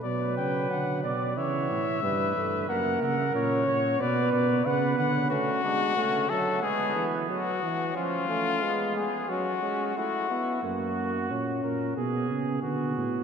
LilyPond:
<<
  \new Staff \with { instrumentName = "Cornet" } { \time 4/4 \key b \minor \tempo 4 = 90 d''8 g''8 fis''8 d''8 e''2 | fis''8 fis''8 cis''4 d''8 d''8 fis''8 fis''8 | fis'4. a'8 gis'8 r8 fis'4 | eis'4. gis'8 fis'4 fis'4 |
r1 | }
  \new Staff \with { instrumentName = "Flugelhorn" } { \time 4/4 \key b \minor b'4. d''8 cis''4 b'4 | ais'4. cis''8 b'4 b'4 | cis'8 d'8 cis'8 a8 b4. r8 | cis'8 cis'8 b4 cis'8 cis'8 e'8 e'8 |
fis'4. ais'8 gis'4 fis'4 | }
  \new Staff \with { instrumentName = "Euphonium" } { \time 4/4 \key b \minor fis2 e4 g8 a8 | ais4 cis'4 b4 b4 | a8 gis8 a8 fis8 gis8 e8 fis8 e8 | eis8 a8 gis8 r8 fis8 gis8 a8 b8 |
ais4 cis'4 b4 b4 | }
  \new Staff \with { instrumentName = "Tuba" } { \clef bass \time 4/4 \key b \minor b,8 cis8 d8 b,8 cis8 a,8 g,8 g,8 | fis,8 cis8 ais,8 ais,8 b,8 b,8 cis8 d8 | r1 | r1 |
fis,4 ais,8 ais,8 b,8 cis8 d8 a,8 | }
>>